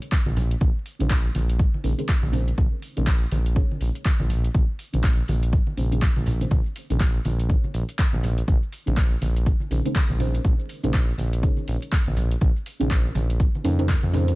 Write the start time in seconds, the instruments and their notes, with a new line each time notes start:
Already playing: synth stab C#4 D#4 G#4 A#4 C#5
0.02 closed hi-hat
0.12 kick, clap, closed hi-hat
0.26 analog synth bass A#1, high conga
0.37 open hi-hat, low conga
0.51 closed hi-hat
0.61 analog synth bass A#1, kick, closed hi-hat, high conga
0.86 open hi-hat
0.99 analog synth bass A#1, synth stab C#4 D#4 G#4 A#4 C5, closed hi-hat, high conga
1.10 kick, clap, closed hi-hat
1.24 muted conga
1.35 analog synth bass A#1, open hi-hat, high conga
1.49 closed hi-hat
1.59 kick, closed hi-hat
1.74 high conga
1.84 analog synth bass A#1, synth stab C#4 D#4 G#4 A#4 C5, open hi-hat
1.98 synth stab C#4 D#4 G#4 A#4 C5, closed hi-hat
2.09 kick, clap, closed hi-hat, muted conga
2.23 analog synth bass A#1, high conga
2.32 synth stab C#4 D#4 G#4 A#4 C5, open hi-hat, muted conga, low conga
2.48 closed hi-hat
2.58 analog synth bass A#1, kick, closed hi-hat, high conga
2.82 open hi-hat
2.96 analog synth bass A#1, synth stab C#4 D#4 G#4 A#4 C5, closed hi-hat, high conga
3.07 kick, clap, closed hi-hat
3.32 analog synth bass A#1, open hi-hat, high conga
3.46 closed hi-hat
3.55 synth stab C#4 D#4 G#4 A#4 C#5, kick, closed hi-hat
3.71 high conga
3.81 analog synth bass A#1, open hi-hat
3.95 closed hi-hat
4.05 kick, clap, closed hi-hat
4.20 analog synth bass A#1, high conga
4.29 open hi-hat, low conga
4.44 closed hi-hat
4.54 analog synth bass A#1, kick, closed hi-hat, high conga
4.79 open hi-hat
4.93 analog synth bass A#1, synth stab C#4 D#4 G#4 A#4 C5, closed hi-hat, high conga
5.04 kick, clap, closed hi-hat
5.18 muted conga
5.28 analog synth bass A#1, open hi-hat, high conga
5.43 closed hi-hat
5.53 kick, closed hi-hat
5.67 high conga
5.77 analog synth bass A#1, synth stab C#4 D#4 G#4 A#4 C5, open hi-hat
5.92 synth stab C#4 D#4 G#4 A#4 C5, closed hi-hat
6.02 kick, clap, closed hi-hat, muted conga
6.16 analog synth bass A#1, high conga
6.26 open hi-hat, muted conga, low conga
6.41 synth stab C#4 D#4 G#4 A#4 C5, closed hi-hat
6.51 analog synth bass A#1, kick, closed hi-hat, high conga, shaker
6.66 shaker
6.76 open hi-hat, shaker
6.90 analog synth bass A#1, synth stab C#4 D#4 G#4 A#4 C5, closed hi-hat, high conga, shaker
7.00 kick, clap, closed hi-hat, shaker
7.15 shaker
7.25 analog synth bass A#1, open hi-hat, high conga, shaker
7.40 closed hi-hat, shaker
7.48 synth stab C#4 D#4 G#4 A#4 C#5, kick, closed hi-hat, shaker
7.64 high conga, shaker
7.74 analog synth bass A#1, open hi-hat, shaker
7.89 closed hi-hat, shaker
7.99 kick, clap, closed hi-hat, shaker
8.13 analog synth bass A#1, high conga, shaker
8.23 open hi-hat, low conga, shaker
8.38 closed hi-hat, shaker
8.48 analog synth bass A#1, kick, closed hi-hat, high conga, shaker
8.63 shaker
8.73 open hi-hat, shaker
8.86 analog synth bass A#1, synth stab C#4 D#4 G#4 A#4 C5, closed hi-hat, high conga, shaker
8.97 kick, clap, closed hi-hat, shaker
9.12 muted conga, shaker
9.22 analog synth bass A#1, open hi-hat, high conga, shaker
9.36 closed hi-hat, shaker
9.46 kick, closed hi-hat, shaker
9.60 high conga, shaker
9.70 analog synth bass A#1, synth stab C#4 D#4 G#4 A#4 C5, open hi-hat, shaker
9.85 synth stab C#4 D#4 G#4 A#4 C5, closed hi-hat, shaker
9.95 kick, clap, closed hi-hat, muted conga, shaker
10.10 analog synth bass A#1, high conga, shaker
10.19 synth stab C#4 D#4 G#4 A#4 C5, open hi-hat, muted conga, low conga, shaker
10.35 closed hi-hat, shaker
10.45 analog synth bass A#1, kick, closed hi-hat, high conga, shaker
10.59 shaker
10.69 open hi-hat, shaker
10.83 analog synth bass A#1, synth stab C#4 D#4 G#4 A#4 C5, closed hi-hat, high conga, shaker
10.94 kick, clap, closed hi-hat, shaker
11.09 shaker
11.18 analog synth bass A#1, open hi-hat, high conga, shaker
11.33 closed hi-hat, shaker
11.42 synth stab C#4 D#4 G#4 A#4 C#5, kick, closed hi-hat, shaker
11.57 high conga, shaker
11.68 analog synth bass A#1, open hi-hat, shaker
11.82 closed hi-hat, shaker
11.92 kick, clap, closed hi-hat, shaker
12.07 analog synth bass A#1, high conga, shaker
12.17 open hi-hat, low conga, shaker
12.31 closed hi-hat, shaker
12.41 analog synth bass A#1, kick, closed hi-hat, high conga, shaker
12.56 shaker
12.66 open hi-hat, shaker
12.80 analog synth bass A#1, synth stab C#4 D#4 G#4 A#4 C5, closed hi-hat, high conga, shaker
12.91 kick, clap, closed hi-hat, shaker
13.05 muted conga, shaker
13.15 analog synth bass A#1, open hi-hat, high conga, low conga, shaker
13.30 closed hi-hat, shaker
13.40 kick, closed hi-hat, shaker
13.55 high conga, shaker
13.64 analog synth bass F2, synth stab C#4 D#4 G#4 A#4 C5, open hi-hat, shaker
13.78 synth stab C#4 D#4 G#4 A#4 C5, closed hi-hat, shaker
13.89 kick, clap, closed hi-hat, muted conga, shaker
14.03 analog synth bass F2, high conga, shaker
14.12 synth stab C#4 D#4 G#4 A#4 C5, open hi-hat, muted conga, low conga, shaker
14.28 closed hi-hat, muted conga, shaker